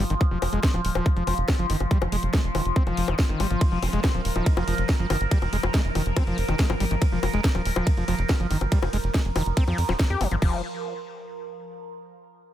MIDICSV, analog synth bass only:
0, 0, Header, 1, 2, 480
1, 0, Start_track
1, 0, Key_signature, -4, "minor"
1, 0, Tempo, 425532
1, 235, Time_signature, 4, 2, 24, 8
1, 14142, End_track
2, 0, Start_track
2, 0, Title_t, "Analog synth bass"
2, 0, Program_c, 0, 38
2, 114, Note_on_c, 0, 32, 94
2, 180, Note_off_c, 0, 32, 0
2, 355, Note_on_c, 0, 29, 83
2, 421, Note_off_c, 0, 29, 0
2, 474, Note_on_c, 0, 29, 99
2, 540, Note_off_c, 0, 29, 0
2, 594, Note_on_c, 0, 29, 95
2, 660, Note_off_c, 0, 29, 0
2, 834, Note_on_c, 0, 27, 87
2, 900, Note_off_c, 0, 27, 0
2, 954, Note_on_c, 0, 27, 96
2, 1020, Note_off_c, 0, 27, 0
2, 1074, Note_on_c, 0, 27, 94
2, 1140, Note_off_c, 0, 27, 0
2, 1314, Note_on_c, 0, 29, 89
2, 1380, Note_off_c, 0, 29, 0
2, 1434, Note_on_c, 0, 29, 104
2, 1500, Note_off_c, 0, 29, 0
2, 1554, Note_on_c, 0, 29, 95
2, 1620, Note_off_c, 0, 29, 0
2, 1794, Note_on_c, 0, 31, 90
2, 1860, Note_off_c, 0, 31, 0
2, 1914, Note_on_c, 0, 31, 105
2, 1980, Note_off_c, 0, 31, 0
2, 2034, Note_on_c, 0, 31, 95
2, 2100, Note_off_c, 0, 31, 0
2, 2274, Note_on_c, 0, 29, 89
2, 2340, Note_off_c, 0, 29, 0
2, 2394, Note_on_c, 0, 29, 98
2, 2460, Note_off_c, 0, 29, 0
2, 2514, Note_on_c, 0, 29, 91
2, 2580, Note_off_c, 0, 29, 0
2, 2754, Note_on_c, 0, 29, 88
2, 2820, Note_off_c, 0, 29, 0
2, 2874, Note_on_c, 0, 29, 101
2, 2940, Note_off_c, 0, 29, 0
2, 2994, Note_on_c, 0, 29, 92
2, 3060, Note_off_c, 0, 29, 0
2, 3234, Note_on_c, 0, 29, 89
2, 3300, Note_off_c, 0, 29, 0
2, 3355, Note_on_c, 0, 29, 100
2, 3421, Note_off_c, 0, 29, 0
2, 3475, Note_on_c, 0, 29, 100
2, 3540, Note_off_c, 0, 29, 0
2, 3715, Note_on_c, 0, 32, 89
2, 3780, Note_off_c, 0, 32, 0
2, 3834, Note_on_c, 0, 32, 103
2, 3900, Note_off_c, 0, 32, 0
2, 3954, Note_on_c, 0, 32, 93
2, 4020, Note_off_c, 0, 32, 0
2, 4194, Note_on_c, 0, 29, 84
2, 4260, Note_off_c, 0, 29, 0
2, 4314, Note_on_c, 0, 29, 98
2, 4380, Note_off_c, 0, 29, 0
2, 4434, Note_on_c, 0, 29, 96
2, 4500, Note_off_c, 0, 29, 0
2, 4674, Note_on_c, 0, 27, 86
2, 4740, Note_off_c, 0, 27, 0
2, 4794, Note_on_c, 0, 27, 95
2, 4860, Note_off_c, 0, 27, 0
2, 4914, Note_on_c, 0, 27, 94
2, 4980, Note_off_c, 0, 27, 0
2, 5154, Note_on_c, 0, 29, 92
2, 5220, Note_off_c, 0, 29, 0
2, 5274, Note_on_c, 0, 29, 103
2, 5340, Note_off_c, 0, 29, 0
2, 5394, Note_on_c, 0, 29, 99
2, 5460, Note_off_c, 0, 29, 0
2, 5634, Note_on_c, 0, 31, 86
2, 5700, Note_off_c, 0, 31, 0
2, 5754, Note_on_c, 0, 31, 102
2, 5820, Note_off_c, 0, 31, 0
2, 5874, Note_on_c, 0, 31, 93
2, 5940, Note_off_c, 0, 31, 0
2, 6114, Note_on_c, 0, 29, 88
2, 6180, Note_off_c, 0, 29, 0
2, 6234, Note_on_c, 0, 29, 101
2, 6300, Note_off_c, 0, 29, 0
2, 6354, Note_on_c, 0, 29, 95
2, 6420, Note_off_c, 0, 29, 0
2, 6594, Note_on_c, 0, 29, 88
2, 6660, Note_off_c, 0, 29, 0
2, 6715, Note_on_c, 0, 29, 98
2, 6781, Note_off_c, 0, 29, 0
2, 6835, Note_on_c, 0, 29, 94
2, 6901, Note_off_c, 0, 29, 0
2, 7075, Note_on_c, 0, 29, 91
2, 7140, Note_off_c, 0, 29, 0
2, 7194, Note_on_c, 0, 29, 103
2, 7260, Note_off_c, 0, 29, 0
2, 7314, Note_on_c, 0, 29, 97
2, 7380, Note_off_c, 0, 29, 0
2, 7555, Note_on_c, 0, 32, 86
2, 7621, Note_off_c, 0, 32, 0
2, 7674, Note_on_c, 0, 32, 104
2, 7740, Note_off_c, 0, 32, 0
2, 7794, Note_on_c, 0, 32, 93
2, 7860, Note_off_c, 0, 32, 0
2, 8034, Note_on_c, 0, 29, 88
2, 8100, Note_off_c, 0, 29, 0
2, 8154, Note_on_c, 0, 29, 103
2, 8220, Note_off_c, 0, 29, 0
2, 8274, Note_on_c, 0, 29, 98
2, 8340, Note_off_c, 0, 29, 0
2, 8514, Note_on_c, 0, 27, 89
2, 8580, Note_off_c, 0, 27, 0
2, 8634, Note_on_c, 0, 27, 101
2, 8700, Note_off_c, 0, 27, 0
2, 8754, Note_on_c, 0, 27, 97
2, 8820, Note_off_c, 0, 27, 0
2, 8994, Note_on_c, 0, 29, 88
2, 9060, Note_off_c, 0, 29, 0
2, 9114, Note_on_c, 0, 29, 99
2, 9180, Note_off_c, 0, 29, 0
2, 9234, Note_on_c, 0, 29, 98
2, 9300, Note_off_c, 0, 29, 0
2, 9474, Note_on_c, 0, 31, 89
2, 9540, Note_off_c, 0, 31, 0
2, 9594, Note_on_c, 0, 31, 102
2, 9660, Note_off_c, 0, 31, 0
2, 9714, Note_on_c, 0, 31, 94
2, 9780, Note_off_c, 0, 31, 0
2, 9954, Note_on_c, 0, 29, 87
2, 10020, Note_off_c, 0, 29, 0
2, 10074, Note_on_c, 0, 29, 97
2, 10140, Note_off_c, 0, 29, 0
2, 10194, Note_on_c, 0, 29, 88
2, 10260, Note_off_c, 0, 29, 0
2, 10434, Note_on_c, 0, 29, 87
2, 10500, Note_off_c, 0, 29, 0
2, 10554, Note_on_c, 0, 29, 102
2, 10620, Note_off_c, 0, 29, 0
2, 10674, Note_on_c, 0, 29, 96
2, 10740, Note_off_c, 0, 29, 0
2, 10914, Note_on_c, 0, 41, 90
2, 10980, Note_off_c, 0, 41, 0
2, 11034, Note_on_c, 0, 41, 100
2, 11100, Note_off_c, 0, 41, 0
2, 11154, Note_on_c, 0, 27, 97
2, 11220, Note_off_c, 0, 27, 0
2, 11395, Note_on_c, 0, 41, 88
2, 11460, Note_off_c, 0, 41, 0
2, 11514, Note_on_c, 0, 31, 107
2, 11580, Note_off_c, 0, 31, 0
2, 11635, Note_on_c, 0, 32, 92
2, 11701, Note_off_c, 0, 32, 0
2, 11754, Note_on_c, 0, 29, 102
2, 11978, Note_off_c, 0, 29, 0
2, 14142, End_track
0, 0, End_of_file